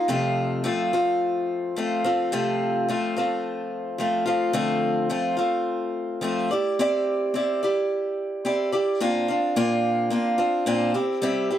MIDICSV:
0, 0, Header, 1, 2, 480
1, 0, Start_track
1, 0, Key_signature, -1, "major"
1, 0, Tempo, 556070
1, 79, Time_signature, 4, 2, 24, 8
1, 10000, End_track
2, 0, Start_track
2, 0, Title_t, "Steel-string acoustic guitar"
2, 0, Program_c, 0, 25
2, 69, Note_on_c, 0, 41, 72
2, 73, Note_on_c, 0, 48, 72
2, 77, Note_on_c, 0, 57, 71
2, 78, Note_on_c, 0, 53, 73
2, 83, Note_on_c, 0, 65, 85
2, 86, Note_on_c, 0, 60, 75
2, 546, Note_off_c, 0, 53, 0
2, 549, Note_off_c, 0, 57, 0
2, 550, Note_on_c, 0, 53, 65
2, 552, Note_on_c, 0, 57, 63
2, 554, Note_off_c, 0, 41, 0
2, 556, Note_off_c, 0, 48, 0
2, 557, Note_off_c, 0, 60, 0
2, 560, Note_on_c, 0, 60, 64
2, 564, Note_off_c, 0, 65, 0
2, 567, Note_on_c, 0, 65, 75
2, 793, Note_off_c, 0, 65, 0
2, 794, Note_off_c, 0, 60, 0
2, 795, Note_off_c, 0, 53, 0
2, 796, Note_off_c, 0, 57, 0
2, 803, Note_on_c, 0, 65, 52
2, 805, Note_on_c, 0, 60, 49
2, 812, Note_on_c, 0, 57, 42
2, 815, Note_on_c, 0, 53, 43
2, 1519, Note_off_c, 0, 53, 0
2, 1523, Note_on_c, 0, 53, 58
2, 1527, Note_off_c, 0, 57, 0
2, 1531, Note_off_c, 0, 60, 0
2, 1531, Note_on_c, 0, 57, 59
2, 1535, Note_on_c, 0, 60, 57
2, 1537, Note_off_c, 0, 65, 0
2, 1541, Note_on_c, 0, 65, 69
2, 1754, Note_off_c, 0, 60, 0
2, 1754, Note_off_c, 0, 65, 0
2, 1762, Note_off_c, 0, 53, 0
2, 1764, Note_on_c, 0, 60, 58
2, 1764, Note_on_c, 0, 65, 58
2, 1766, Note_off_c, 0, 57, 0
2, 1776, Note_on_c, 0, 57, 51
2, 1779, Note_on_c, 0, 53, 47
2, 1998, Note_off_c, 0, 60, 0
2, 1999, Note_off_c, 0, 53, 0
2, 2002, Note_off_c, 0, 57, 0
2, 2002, Note_off_c, 0, 65, 0
2, 2003, Note_on_c, 0, 48, 76
2, 2008, Note_on_c, 0, 41, 69
2, 2008, Note_on_c, 0, 60, 79
2, 2009, Note_on_c, 0, 53, 79
2, 2012, Note_on_c, 0, 57, 81
2, 2019, Note_on_c, 0, 65, 78
2, 2482, Note_off_c, 0, 48, 0
2, 2485, Note_off_c, 0, 41, 0
2, 2487, Note_off_c, 0, 53, 0
2, 2490, Note_on_c, 0, 53, 63
2, 2494, Note_off_c, 0, 57, 0
2, 2495, Note_off_c, 0, 60, 0
2, 2498, Note_on_c, 0, 57, 64
2, 2499, Note_on_c, 0, 60, 70
2, 2502, Note_off_c, 0, 65, 0
2, 2506, Note_on_c, 0, 65, 68
2, 2722, Note_off_c, 0, 65, 0
2, 2726, Note_off_c, 0, 53, 0
2, 2730, Note_off_c, 0, 57, 0
2, 2730, Note_off_c, 0, 60, 0
2, 2732, Note_on_c, 0, 65, 53
2, 2741, Note_on_c, 0, 60, 48
2, 2745, Note_on_c, 0, 57, 45
2, 2755, Note_on_c, 0, 53, 43
2, 3429, Note_off_c, 0, 53, 0
2, 3439, Note_on_c, 0, 53, 64
2, 3440, Note_off_c, 0, 57, 0
2, 3446, Note_off_c, 0, 60, 0
2, 3448, Note_off_c, 0, 65, 0
2, 3450, Note_on_c, 0, 60, 65
2, 3451, Note_on_c, 0, 57, 66
2, 3459, Note_on_c, 0, 65, 70
2, 3664, Note_off_c, 0, 65, 0
2, 3674, Note_on_c, 0, 65, 60
2, 3677, Note_off_c, 0, 60, 0
2, 3679, Note_off_c, 0, 57, 0
2, 3681, Note_off_c, 0, 53, 0
2, 3687, Note_on_c, 0, 60, 52
2, 3689, Note_on_c, 0, 57, 53
2, 3697, Note_on_c, 0, 53, 47
2, 3903, Note_off_c, 0, 57, 0
2, 3904, Note_off_c, 0, 53, 0
2, 3911, Note_off_c, 0, 60, 0
2, 3911, Note_off_c, 0, 65, 0
2, 3913, Note_on_c, 0, 50, 75
2, 3914, Note_on_c, 0, 53, 75
2, 3914, Note_on_c, 0, 57, 81
2, 3921, Note_on_c, 0, 60, 87
2, 3922, Note_on_c, 0, 65, 89
2, 4388, Note_off_c, 0, 53, 0
2, 4392, Note_off_c, 0, 57, 0
2, 4398, Note_off_c, 0, 65, 0
2, 4398, Note_on_c, 0, 53, 57
2, 4399, Note_off_c, 0, 50, 0
2, 4402, Note_on_c, 0, 57, 59
2, 4404, Note_off_c, 0, 60, 0
2, 4408, Note_on_c, 0, 60, 67
2, 4409, Note_on_c, 0, 65, 74
2, 4623, Note_off_c, 0, 65, 0
2, 4633, Note_on_c, 0, 65, 50
2, 4637, Note_off_c, 0, 60, 0
2, 4640, Note_off_c, 0, 57, 0
2, 4641, Note_off_c, 0, 53, 0
2, 4647, Note_on_c, 0, 60, 48
2, 4651, Note_on_c, 0, 57, 44
2, 5360, Note_off_c, 0, 57, 0
2, 5360, Note_off_c, 0, 65, 0
2, 5362, Note_on_c, 0, 53, 64
2, 5370, Note_off_c, 0, 60, 0
2, 5371, Note_on_c, 0, 57, 60
2, 5374, Note_on_c, 0, 60, 66
2, 5386, Note_on_c, 0, 65, 71
2, 5604, Note_off_c, 0, 53, 0
2, 5608, Note_off_c, 0, 57, 0
2, 5610, Note_off_c, 0, 60, 0
2, 5614, Note_off_c, 0, 65, 0
2, 5617, Note_on_c, 0, 74, 61
2, 5629, Note_on_c, 0, 67, 47
2, 5636, Note_on_c, 0, 64, 44
2, 5852, Note_off_c, 0, 74, 0
2, 5856, Note_off_c, 0, 64, 0
2, 5858, Note_off_c, 0, 67, 0
2, 5863, Note_on_c, 0, 60, 81
2, 5866, Note_on_c, 0, 64, 78
2, 5874, Note_on_c, 0, 67, 84
2, 5875, Note_on_c, 0, 74, 84
2, 6324, Note_off_c, 0, 60, 0
2, 6335, Note_on_c, 0, 60, 64
2, 6336, Note_off_c, 0, 64, 0
2, 6337, Note_off_c, 0, 67, 0
2, 6341, Note_off_c, 0, 74, 0
2, 6348, Note_on_c, 0, 64, 62
2, 6348, Note_on_c, 0, 67, 64
2, 6352, Note_on_c, 0, 74, 67
2, 6571, Note_off_c, 0, 60, 0
2, 6573, Note_off_c, 0, 74, 0
2, 6577, Note_off_c, 0, 64, 0
2, 6577, Note_off_c, 0, 67, 0
2, 6584, Note_on_c, 0, 74, 53
2, 6595, Note_on_c, 0, 67, 47
2, 6596, Note_on_c, 0, 64, 43
2, 7289, Note_off_c, 0, 67, 0
2, 7292, Note_off_c, 0, 64, 0
2, 7292, Note_on_c, 0, 60, 62
2, 7295, Note_off_c, 0, 74, 0
2, 7299, Note_on_c, 0, 67, 60
2, 7302, Note_on_c, 0, 64, 60
2, 7307, Note_on_c, 0, 74, 68
2, 7520, Note_off_c, 0, 74, 0
2, 7527, Note_off_c, 0, 67, 0
2, 7529, Note_off_c, 0, 60, 0
2, 7530, Note_on_c, 0, 74, 55
2, 7534, Note_off_c, 0, 64, 0
2, 7537, Note_on_c, 0, 67, 55
2, 7549, Note_on_c, 0, 64, 47
2, 7768, Note_off_c, 0, 74, 0
2, 7771, Note_off_c, 0, 67, 0
2, 7773, Note_on_c, 0, 46, 83
2, 7777, Note_off_c, 0, 64, 0
2, 7777, Note_on_c, 0, 58, 82
2, 7780, Note_on_c, 0, 60, 91
2, 7780, Note_on_c, 0, 62, 79
2, 7783, Note_on_c, 0, 65, 86
2, 8002, Note_off_c, 0, 65, 0
2, 8009, Note_off_c, 0, 46, 0
2, 8012, Note_off_c, 0, 58, 0
2, 8012, Note_on_c, 0, 65, 55
2, 8013, Note_off_c, 0, 60, 0
2, 8013, Note_off_c, 0, 62, 0
2, 8024, Note_on_c, 0, 60, 42
2, 8032, Note_on_c, 0, 62, 45
2, 8248, Note_off_c, 0, 60, 0
2, 8248, Note_off_c, 0, 62, 0
2, 8249, Note_off_c, 0, 65, 0
2, 8254, Note_on_c, 0, 58, 87
2, 8258, Note_on_c, 0, 46, 75
2, 8259, Note_on_c, 0, 60, 90
2, 8259, Note_on_c, 0, 62, 85
2, 8261, Note_on_c, 0, 65, 98
2, 8711, Note_off_c, 0, 58, 0
2, 8720, Note_off_c, 0, 62, 0
2, 8722, Note_on_c, 0, 58, 62
2, 8727, Note_off_c, 0, 60, 0
2, 8730, Note_on_c, 0, 62, 59
2, 8731, Note_off_c, 0, 46, 0
2, 8731, Note_off_c, 0, 65, 0
2, 8731, Note_on_c, 0, 60, 64
2, 8741, Note_on_c, 0, 65, 71
2, 8949, Note_off_c, 0, 65, 0
2, 8954, Note_off_c, 0, 60, 0
2, 8959, Note_off_c, 0, 62, 0
2, 8959, Note_on_c, 0, 65, 56
2, 8963, Note_off_c, 0, 58, 0
2, 8964, Note_on_c, 0, 60, 52
2, 8970, Note_on_c, 0, 62, 43
2, 9199, Note_off_c, 0, 60, 0
2, 9200, Note_off_c, 0, 62, 0
2, 9201, Note_off_c, 0, 65, 0
2, 9203, Note_on_c, 0, 46, 84
2, 9207, Note_on_c, 0, 58, 75
2, 9209, Note_on_c, 0, 60, 93
2, 9210, Note_on_c, 0, 65, 91
2, 9211, Note_on_c, 0, 62, 82
2, 9441, Note_off_c, 0, 65, 0
2, 9443, Note_off_c, 0, 46, 0
2, 9444, Note_off_c, 0, 60, 0
2, 9444, Note_on_c, 0, 67, 62
2, 9445, Note_off_c, 0, 58, 0
2, 9447, Note_off_c, 0, 62, 0
2, 9449, Note_on_c, 0, 64, 55
2, 9454, Note_on_c, 0, 60, 53
2, 9682, Note_on_c, 0, 55, 74
2, 9683, Note_off_c, 0, 60, 0
2, 9683, Note_off_c, 0, 67, 0
2, 9684, Note_on_c, 0, 48, 78
2, 9686, Note_off_c, 0, 64, 0
2, 9694, Note_on_c, 0, 60, 82
2, 9695, Note_on_c, 0, 64, 80
2, 9695, Note_on_c, 0, 67, 78
2, 9920, Note_off_c, 0, 67, 0
2, 9922, Note_off_c, 0, 55, 0
2, 9923, Note_off_c, 0, 48, 0
2, 9928, Note_off_c, 0, 60, 0
2, 9929, Note_off_c, 0, 64, 0
2, 9931, Note_on_c, 0, 67, 53
2, 9938, Note_on_c, 0, 64, 48
2, 9944, Note_on_c, 0, 60, 42
2, 10000, Note_off_c, 0, 60, 0
2, 10000, Note_off_c, 0, 64, 0
2, 10000, Note_off_c, 0, 67, 0
2, 10000, End_track
0, 0, End_of_file